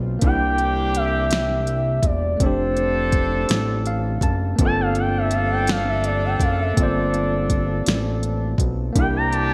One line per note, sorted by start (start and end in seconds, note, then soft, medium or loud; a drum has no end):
0.00 0.18 B1 loud
0.00 0.17 A#3 medium
0.00 0.18 C4 medium
0.00 0.20 F4 medium
0.00 0.22 C5 medium
0.19 2.01 C2 loud
0.19 2.00 E3 medium
0.19 2.35 A#3 medium
0.19 2.36 D4 medium
0.19 2.00 D4 medium
0.19 2.01 G4 medium
0.19 kick loud
0.19 closed hi-hat medium
0.25 2.38 E4 medium
0.25 2.39 G4 medium
0.25 0.98 G5 loud
0.58 closed hi-hat soft
0.95 2.07 E5 loud
0.95 closed hi-hat medium
1.31 snare loud
1.31 closed hi-hat loud
1.67 closed hi-hat medium
2.03 2.36 E1 loud
2.03 2.44 D5 loud
2.03 kick loud
2.03 closed hi-hat medium
2.37 3.46 F1 loud
2.37 4.19 F3 medium
2.37 4.53 A3 medium
2.37 4.55 C4 medium
2.37 4.19 D4 medium
2.37 4.19 A4 medium
2.37 kick loud
2.37 closed hi-hat medium
2.42 4.56 D4 medium
2.42 4.58 G4 medium
2.42 4.23 C5 loud
2.77 closed hi-hat soft
3.12 kick medium
3.12 closed hi-hat medium
3.49 4.19 A1 loud
3.49 snare loud
3.49 closed hi-hat loud
3.86 4.20 F5 medium
3.86 closed hi-hat medium
4.21 4.55 F#1 medium
4.21 4.57 A5 medium
4.21 kick loud
4.21 closed hi-hat medium
4.56 6.37 G1 loud
4.56 8.55 F3 medium
4.56 6.72 A#3 medium
4.56 6.73 C4 medium
4.56 8.55 D4 medium
4.56 8.55 A4 medium
4.56 kick loud
4.56 closed hi-hat medium
4.62 6.75 F4 medium
4.62 6.76 A4 medium
4.62 4.82 A5 loud
4.81 5.01 F5 loud
4.95 closed hi-hat soft
5.00 5.19 G5 loud
5.18 5.35 E5 loud
5.31 5.51 F5 medium
5.31 closed hi-hat medium
5.51 5.72 G5 loud
5.67 5.90 F5 loud
5.67 snare loud
5.67 closed hi-hat medium
5.89 6.07 E5 loud
6.04 6.26 D5 loud
6.04 closed hi-hat medium
6.24 6.44 G5 medium
6.40 6.73 F#1 loud
6.40 6.62 F5 loud
6.40 kick loud
6.40 closed hi-hat medium
6.61 6.78 E5 medium
6.74 8.90 A#3 medium
6.74 8.91 C4 medium
6.74 kick loud
6.74 closed hi-hat medium
6.78 7.83 G1 loud
6.78 8.93 F4 medium
6.78 8.56 D5 loud
6.83 8.94 C5 medium
7.14 closed hi-hat soft
7.50 kick medium
7.50 closed hi-hat medium
7.86 8.56 A1 loud
7.86 snare loud
7.86 closed hi-hat loud
8.23 closed hi-hat medium
8.58 8.91 B1 medium
8.58 kick loud
8.58 closed hi-hat medium
8.93 9.54 C2 loud
8.93 9.54 E3 medium
8.93 9.54 A#3 medium
8.93 9.54 D4 medium
8.93 9.54 G4 medium
8.93 kick loud
8.93 closed hi-hat medium
8.98 9.54 E4 medium
8.98 9.54 G4 medium
8.98 9.14 G5 loud
9.17 9.34 A#5 loud
9.33 9.53 A5 medium
9.33 closed hi-hat soft